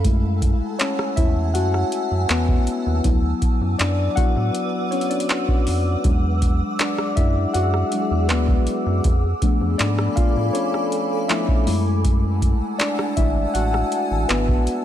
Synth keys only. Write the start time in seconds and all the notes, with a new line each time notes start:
0.04 G#3 A3 E4
0.79 C#4 C#5
1.16 E4 E5
1.54 F#4 F#5
2.29 B3 B4
3.04 F#3 B3 E4
3.78 D4 D5
4.16 F#3 B3 E4 F#4 F#5
4.91 C#4 C#5
5.10 D4 D5
6.04 F#3 G#3 D4
6.79 D4 D5
7.16 E4 E5
7.53 F#4 F#5
7.92 F#3 G#3 D4
8.28 B3 B4
9.42 F3 A3 B3 D4
9.78 D4 D5
10.16 F4 F5
10.53 C#4 C#5
11.28 F3 A3 B3 D4 E4 E5
11.67 G#3 A3 E4
12.78 D4 D5
13.16 E4 E5
13.54 F#4 F#5
14.28 B3 B4